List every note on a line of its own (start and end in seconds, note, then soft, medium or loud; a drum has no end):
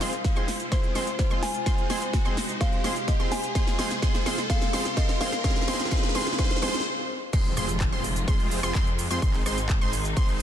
0.00 5.40 C3 medium
0.00 0.10 F3 medium
0.00 3.51 G#3 medium
0.00 0.10 G#3 medium
0.00 0.13 G#3 medium
0.00 0.11 C4 medium
0.00 0.13 C4 medium
0.00 1.64 F4 medium
0.00 0.13 F4 medium
0.00 0.13 G#4 medium
0.00 0.11 G#4 medium
0.00 5.40 C5 medium
0.00 0.13 C5 medium
0.00 0.75 F5 loud
0.00 0.13 C6 medium
0.00 snare medium
0.00 open hi-hat loud
0.00 riser medium
0.13 closed hi-hat soft
0.24 kick loud
0.24 snare medium
0.24 closed hi-hat medium
0.35 0.45 F3 medium
0.35 0.46 G#3 medium
0.35 0.49 G#3 medium
0.35 0.49 C4 medium
0.35 0.46 C4 medium
0.35 0.49 F4 medium
0.35 0.49 G#4 medium
0.35 0.46 G#4 medium
0.35 0.49 C5 medium
0.35 0.49 C6 medium
0.35 closed hi-hat soft
0.48 snare medium
0.48 open hi-hat loud
0.60 closed hi-hat soft
0.72 0.93 G#3 medium
0.72 0.93 C4 medium
0.72 0.93 F4 medium
0.72 0.93 G#4 medium
0.72 0.93 C5 medium
0.72 1.18 C5 medium
0.72 0.93 C6 medium
0.72 kick loud
0.72 snare medium
0.72 closed hi-hat soft
0.83 closed hi-hat soft
0.95 1.05 F3 medium
0.95 1.08 G#3 medium
0.95 1.05 G#3 medium
0.95 1.08 C4 medium
0.95 1.05 C4 medium
0.95 1.08 F4 medium
0.95 1.08 G#4 medium
0.95 1.05 G#4 medium
0.95 1.08 C5 medium
0.95 1.08 C6 medium
0.95 snare medium
0.95 open hi-hat loud
1.07 closed hi-hat soft
1.19 1.43 C5 medium
1.19 kick loud
1.19 snare medium
1.19 closed hi-hat soft
1.30 1.40 F3 medium
1.30 1.40 G#3 medium
1.30 1.43 G#3 medium
1.30 1.40 C4 medium
1.30 1.43 C4 medium
1.30 1.43 F4 medium
1.30 1.43 G#4 medium
1.30 1.41 G#4 medium
1.30 1.43 C5 medium
1.30 1.43 C6 medium
1.30 closed hi-hat soft
1.43 2.64 G#5 loud
1.43 snare medium
1.43 open hi-hat loud
1.54 closed hi-hat soft
1.66 1.87 G#3 medium
1.66 1.87 C4 medium
1.66 3.53 D#4 medium
1.66 1.87 F4 medium
1.66 1.87 G#4 medium
1.66 1.87 C5 medium
1.66 1.87 C6 medium
1.66 kick loud
1.66 snare medium
1.66 closed hi-hat medium
1.78 closed hi-hat soft
1.89 1.99 F3 medium
1.89 2.02 G#3 medium
1.89 1.99 G#3 medium
1.89 2.02 C4 medium
1.89 2.00 C4 medium
1.89 2.02 F4 medium
1.89 2.02 G#4 medium
1.89 2.00 G#4 medium
1.89 2.02 C5 medium
1.89 2.02 C6 medium
1.89 snare medium
1.89 open hi-hat loud
2.02 closed hi-hat medium
2.13 kick loud
2.13 snare medium
2.13 closed hi-hat medium
2.25 2.35 F3 medium
2.25 2.35 G#3 medium
2.25 2.38 G#3 medium
2.25 2.38 C4 medium
2.25 2.35 C4 medium
2.25 2.38 F4 medium
2.25 2.38 G#4 medium
2.25 2.35 G#4 medium
2.25 2.38 C5 medium
2.25 2.38 C6 medium
2.25 closed hi-hat soft
2.37 snare medium
2.37 open hi-hat loud
2.49 closed hi-hat medium
2.61 2.82 G#3 medium
2.61 2.82 C4 medium
2.61 2.82 F4 medium
2.61 2.82 G#4 medium
2.61 2.82 C5 medium
2.61 3.05 F5 loud
2.61 2.82 C6 medium
2.61 kick loud
2.61 snare medium
2.61 closed hi-hat medium
2.73 closed hi-hat soft
2.84 2.94 F3 medium
2.84 2.94 G#3 medium
2.84 2.97 G#3 medium
2.84 2.97 C4 medium
2.84 2.94 C4 medium
2.84 2.97 F4 medium
2.84 2.97 G#4 medium
2.84 2.94 G#4 medium
2.84 2.97 C5 medium
2.84 2.97 C6 medium
2.84 snare medium
2.84 open hi-hat loud
2.96 closed hi-hat medium
3.08 3.19 D#5 medium
3.08 kick loud
3.08 snare medium
3.08 closed hi-hat medium
3.19 3.29 F3 medium
3.19 3.29 G#3 medium
3.19 3.32 G#3 medium
3.19 3.32 C4 medium
3.19 3.30 C4 medium
3.19 3.32 F4 medium
3.19 3.32 G#4 medium
3.19 3.30 G#4 medium
3.19 3.32 C5 medium
3.19 3.32 C6 medium
3.19 closed hi-hat soft
3.32 4.53 G#5 loud
3.32 snare medium
3.32 open hi-hat loud
3.43 closed hi-hat medium
3.55 5.42 G#3 medium
3.55 3.76 G#3 medium
3.55 3.76 C4 medium
3.55 6.83 F4 medium
3.55 3.76 F4 medium
3.55 3.76 G#4 medium
3.55 3.76 C5 medium
3.55 3.76 C6 medium
3.55 kick loud
3.55 snare medium
3.55 closed hi-hat medium
3.67 snare medium
3.67 closed hi-hat soft
3.78 3.88 F3 medium
3.78 3.91 G#3 medium
3.78 3.88 G#3 medium
3.78 3.91 C4 medium
3.78 3.89 C4 medium
3.78 3.91 F4 medium
3.78 3.91 G#4 medium
3.78 3.89 G#4 medium
3.78 3.91 C5 medium
3.78 3.91 C6 medium
3.78 snare loud
3.78 open hi-hat loud
3.91 snare medium
3.91 closed hi-hat medium
4.02 4.23 G#3 medium
4.02 4.23 C4 medium
4.02 4.23 F4 medium
4.02 4.23 G#4 medium
4.02 4.23 C5 medium
4.02 4.23 C6 medium
4.02 kick loud
4.02 snare medium
4.02 closed hi-hat medium
4.14 snare medium
4.14 closed hi-hat soft
4.25 4.35 F3 medium
4.25 4.36 G#3 medium
4.25 4.38 G#3 medium
4.25 4.39 C4 medium
4.25 4.36 C4 medium
4.25 4.38 F4 medium
4.25 4.38 G#4 medium
4.25 4.36 G#4 medium
4.25 4.39 C5 medium
4.25 4.39 C6 medium
4.25 snare medium
4.25 open hi-hat loud
4.38 snare medium
4.38 closed hi-hat medium
4.50 4.70 G#3 medium
4.50 4.70 C4 medium
4.50 4.71 F4 medium
4.50 4.71 G#4 medium
4.50 4.71 C5 medium
4.50 4.98 F5 loud
4.50 4.71 C6 medium
4.50 kick loud
4.50 snare loud
4.50 closed hi-hat medium
4.62 snare medium
4.62 closed hi-hat soft
4.73 4.83 F3 medium
4.73 4.83 G#3 medium
4.73 4.86 G#3 medium
4.73 4.86 C4 medium
4.73 4.83 C4 medium
4.73 4.86 F4 medium
4.73 4.86 G#4 medium
4.73 4.83 G#4 medium
4.73 4.86 C5 medium
4.73 4.86 C6 medium
4.73 snare loud
4.73 open hi-hat loud
4.85 snare medium
4.85 closed hi-hat medium
4.97 5.18 G#3 medium
4.97 5.18 C4 medium
4.97 5.18 F4 medium
4.97 5.18 G#4 medium
4.97 5.18 C5 medium
4.97 5.08 D#5 medium
4.97 5.18 C6 medium
4.97 kick loud
4.97 snare loud
4.97 closed hi-hat medium
5.09 snare medium
5.09 closed hi-hat soft
5.20 5.30 F3 medium
5.20 5.30 G#3 medium
5.20 5.33 G#3 medium
5.20 5.33 C4 medium
5.20 5.30 C4 medium
5.20 5.33 F4 medium
5.20 5.33 G#4 medium
5.20 5.30 G#4 medium
5.20 5.33 C5 medium
5.20 6.42 F5 loud
5.20 5.33 C6 medium
5.20 snare loud
5.20 open hi-hat loud
5.33 snare medium
5.33 closed hi-hat medium
5.43 6.85 C#3 medium
5.43 5.54 F3 medium
5.43 5.54 G#3 medium
5.43 5.65 G#3 medium
5.43 6.85 A#3 medium
5.43 5.65 C4 medium
5.43 5.54 C4 medium
5.43 5.65 F4 medium
5.43 5.65 G#4 medium
5.43 5.54 G#4 medium
5.43 6.85 A#4 medium
5.43 5.65 C5 medium
5.43 5.65 C6 medium
5.43 kick loud
5.43 snare loud
5.43 closed hi-hat medium
5.50 snare medium
5.56 snare medium
5.56 closed hi-hat soft
5.62 snare medium
5.67 5.77 F3 medium
5.67 5.89 G#3 medium
5.67 5.77 G#3 medium
5.67 5.89 C4 medium
5.67 5.78 C4 medium
5.67 5.89 F4 medium
5.67 5.89 G#4 medium
5.67 5.78 G#4 medium
5.67 5.89 C5 medium
5.67 5.89 C6 loud
5.67 snare loud
5.67 open hi-hat loud
5.74 snare medium
5.79 snare medium
5.79 closed hi-hat medium
5.85 snare medium
5.91 6.01 F3 medium
5.91 6.01 G#3 medium
5.91 6.12 G#3 medium
5.91 6.12 C4 medium
5.91 6.01 C4 medium
5.91 6.12 F4 medium
5.91 6.12 G#4 medium
5.91 6.01 G#4 medium
5.91 6.12 C5 loud
5.91 6.12 C6 medium
5.91 kick loud
5.91 snare loud
5.91 closed hi-hat medium
5.97 snare medium
6.03 snare medium
6.03 closed hi-hat soft
6.09 snare medium
6.14 6.24 F3 medium
6.14 6.36 G#3 medium
6.14 6.25 G#3 medium
6.14 6.36 C4 medium
6.14 6.25 C4 medium
6.14 6.36 F4 medium
6.14 6.36 G#4 medium
6.14 6.25 G#4 medium
6.14 6.36 C5 medium
6.14 6.36 C6 medium
6.14 snare loud
6.14 open hi-hat loud
6.21 snare medium
6.27 snare medium
6.27 closed hi-hat medium
6.33 snare medium
6.38 6.48 F3 medium
6.38 6.60 G#3 medium
6.38 6.48 G#3 medium
6.38 6.60 C4 medium
6.38 6.48 C4 medium
6.38 6.60 F4 medium
6.38 6.60 G#4 medium
6.38 6.49 G#4 medium
6.38 6.60 C5 medium
6.38 6.83 C5 medium
6.38 6.60 C6 medium
6.38 kick loud
6.38 snare loud
6.38 closed hi-hat medium
6.44 snare medium
6.50 snare loud
6.50 closed hi-hat soft
6.56 snare loud
6.62 6.72 F3 medium
6.62 6.83 G#3 medium
6.62 6.72 G#3 medium
6.62 6.83 C4 medium
6.62 6.72 C4 medium
6.62 6.83 F4 medium
6.62 6.83 G#4 medium
6.62 6.72 G#4 medium
6.62 6.83 C5 medium
6.62 6.83 C6 loud
6.62 snare loud
6.62 open hi-hat loud
6.68 snare medium
6.74 snare medium
6.74 closed hi-hat medium
6.80 snare medium
7.33 7.55 F1 medium
7.33 9.20 C3 medium
7.33 9.20 F3 medium
7.33 7.54 G#3 medium
7.33 10.42 G#3 medium
7.33 7.54 C4 medium
7.33 7.54 F4 medium
7.33 9.20 F4 medium
7.33 7.54 G#4 medium
7.33 7.54 C5 medium
7.33 7.54 C6 medium
7.33 kick loud
7.33 closed hi-hat medium
7.33 crash loud
7.33 impact medium
7.33 cabasa soft
7.45 closed hi-hat soft
7.57 7.90 F1 loud
7.57 7.69 G#3 medium
7.57 7.69 C4 medium
7.57 7.69 F4 medium
7.57 7.69 G#4 medium
7.57 7.69 C5 medium
7.57 7.69 C6 medium
7.57 cross-stick medium
7.57 open hi-hat loud
7.57 cabasa medium
7.69 closed hi-hat medium
7.69 cabasa soft
7.80 kick loud
7.80 clap loud
7.80 closed hi-hat medium
7.80 cabasa soft
7.92 8.25 F1 loud
7.92 8.05 G#3 medium
7.92 8.05 C4 medium
7.92 8.05 F4 medium
7.92 8.05 G#4 medium
7.92 8.05 C5 medium
7.92 8.05 C6 medium
7.92 closed hi-hat soft
8.04 open hi-hat loud
8.04 cabasa medium
8.16 closed hi-hat medium
8.16 cabasa soft
8.28 8.61 F1 loud
8.28 8.60 G#3 medium
8.28 8.60 C4 medium
8.28 8.60 F4 medium
8.28 8.60 G#4 medium
8.28 8.60 C5 medium
8.28 8.60 C6 medium
8.28 kick loud
8.28 closed hi-hat medium
8.28 cabasa soft
8.40 closed hi-hat soft
8.51 open hi-hat loud
8.51 cabasa medium
8.63 8.73 F1 loud
8.63 8.73 G#3 loud
8.63 8.73 C4 medium
8.63 8.73 F4 medium
8.63 8.73 G#4 medium
8.63 8.73 C5 loud
8.63 8.73 C6 loud
8.63 cross-stick medium
8.63 closed hi-hat medium
8.63 cabasa soft
8.75 9.08 F2 loud
8.75 8.87 G#3 loud
8.75 8.87 C4 medium
8.75 8.87 F4 medium
8.75 8.87 G#4 medium
8.75 8.87 C5 loud
8.75 8.87 C6 loud
8.75 kick loud
8.75 clap loud
8.75 closed hi-hat medium
8.75 cabasa soft
8.87 closed hi-hat soft
8.99 open hi-hat loud
8.99 cabasa medium
9.10 9.20 F2 loud
9.10 9.20 G#3 medium
9.10 9.20 C4 medium
9.10 9.20 F4 medium
9.10 9.20 G#4 medium
9.10 9.20 C5 medium
9.10 9.20 C6 medium
9.10 closed hi-hat medium
9.10 cabasa soft
9.22 9.44 G#1 loud
9.22 10.42 C3 medium
9.22 10.42 D#3 medium
9.22 9.43 G#3 medium
9.22 9.43 C4 medium
9.22 10.42 D#4 medium
9.22 9.43 D#4 medium
9.22 9.43 G#4 medium
9.22 9.43 C5 medium
9.22 9.43 C6 medium
9.22 kick loud
9.22 closed hi-hat medium
9.22 cabasa soft
9.34 clap soft
9.34 closed hi-hat soft
9.46 9.79 G#1 loud
9.46 9.58 G#3 medium
9.46 9.58 C4 medium
9.46 9.58 D#4 medium
9.46 9.58 G#4 medium
9.46 9.58 C5 medium
9.46 9.58 C6 medium
9.46 cross-stick medium
9.46 open hi-hat loud
9.46 cabasa medium
9.58 closed hi-hat medium
9.58 cabasa soft
9.69 kick loud
9.69 clap loud
9.69 closed hi-hat medium
9.69 cabasa soft
9.81 10.14 G#1 loud
9.81 9.94 G#3 medium
9.81 9.94 C4 medium
9.81 9.94 D#4 medium
9.81 9.94 G#4 medium
9.81 9.94 C5 medium
9.81 9.94 C6 medium
9.81 closed hi-hat soft
9.93 open hi-hat loud
9.93 cabasa medium
10.05 closed hi-hat medium
10.05 cabasa soft
10.17 10.42 G#1 loud
10.17 10.42 G#3 medium
10.17 10.42 C4 medium
10.17 10.42 D#4 medium
10.17 10.42 G#4 medium
10.17 10.42 C5 loud
10.17 10.42 C6 medium
10.17 kick loud
10.17 closed hi-hat medium
10.17 cabasa soft
10.29 closed hi-hat soft